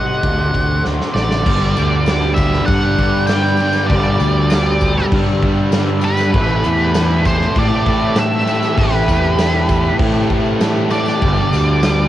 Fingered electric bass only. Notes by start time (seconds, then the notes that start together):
0.24 D2
0.55 D2
0.87 D2
1.15 A1
1.47 G1
1.79 D2
2.68 G2
3.90 G1
4.20 D2
5.13 G2
6.35 A1
6.66 E2
7.56 A2
8.78 A1
9.08 E2
9.99 A2
11.22 G1
11.53 D2